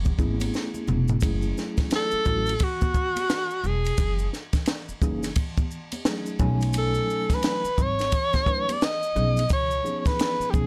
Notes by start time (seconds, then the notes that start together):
Already playing: F#1
0.05 kick, high conga, maracas
0.18 G#1 G#3 B3 C#4 E4 G#4, kick, maracas
0.25 A3
0.40 ride, high conga, maracas
0.54 snare, maracas
0.74 high conga, maracas
0.88 E1, mid tom, low conga, maracas
1.08 floor tom, maracas
1.21 F#1 F#3 A3 C#4 E4 G#4, kick, ride, maracas
1.42 maracas
1.58 snare, maracas
1.77 kick, snare, ride, maracas
1.90 snare, hi-hat pedal, ride, maracas
1.96 A4
2.11 muted upright bass stroke, maracas
2.25 A1 F#3 A3 C#4 E4 F#4, kick, low conga, maracas
2.46 ride, maracas
2.59 kick, ride, high conga, maracas
2.64 F#4
2.81 kick, high conga, maracas
2.94 kick, maracas
3.16 ride, high conga, maracas
3.30 snare, hi-hat pedal, ride, maracas
3.51 maracas
3.64 E1 G#4, low conga, maracas
3.84 ride, maracas
3.97 F#1, kick, ride, maracas
4.19 maracas
4.33 snare, maracas
4.53 kick, snare, ride, maracas
4.66 snare, hi-hat pedal, ride, maracas
4.89 muted upright bass stroke, maracas
5.02 F#1 E3 A#3 C#4 D#4 G#4, kick, low conga, maracas
5.23 snare, ride, maracas
5.36 kick, ride, high conga, maracas
5.58 kick, high conga, maracas
5.71 maracas
5.92 ride, high conga, maracas
6.05 F#3 A3 C#4 D#4 G#4, snare, hi-hat pedal, ride, maracas
6.26 maracas
6.39 B1 F#3 A3 C#4 D#4 G#5, kick, low conga, maracas
6.61 ride, maracas
6.73 ride, maracas
6.78 A4
6.95 maracas
7.10 maracas
7.30 kick, snare, ride, maracas
7.34 B4
7.43 snare, hi-hat pedal, ride, maracas
7.64 muted upright bass stroke, maracas
7.78 G#1, kick, low conga, maracas
7.82 C#5
7.99 snare, ride, maracas
8.12 kick, ride, high conga, maracas
8.33 kick, snare, high conga, maracas
8.46 F#3 A3 C#4 D#4 B4, kick, maracas
8.69 D5, ride, high conga, maracas
8.82 D#5, snare, hi-hat pedal, ride, maracas
9.03 maracas
9.15 B1 F3 B3 C#4 D#4 G#4, low conga, maracas
9.37 ride, maracas
9.49 C#2 C#5, kick, ride, maracas
9.71 maracas
9.83 F3 B3 C#4 D#4 G#4, high conga, maracas
10.00 C#5
10.05 B4, kick, snare, ride, maracas
10.19 snare, hi-hat pedal, ride, maracas
10.40 muted upright bass stroke, maracas
10.50 B1 F3 B3 C#4 D#4 G4 G#4, kick, low conga, maracas